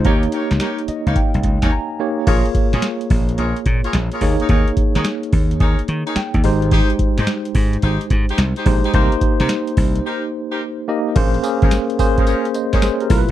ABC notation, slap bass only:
X:1
M:4/4
L:1/16
Q:"Swing 16ths" 1/4=108
K:Bbdor
V:1 name="Slap bass" clef=bass
E,,2 z D,, z3 D,, z C,, D,, E,, z4 | B,,, z2 B,, z2 B,,,2 B,,, z B,, z B,,, z E,, z | E,, z2 E, z2 E,,2 E,, z E, z2 E,, A,,,2- | A,,, z2 A,, z2 A,,2 A,,, z A,, z C,, z B,,, z |
C,, z2 C, z2 C,,2 z8 | B,,,2 z A,,, z8 z2 =B,,, z |]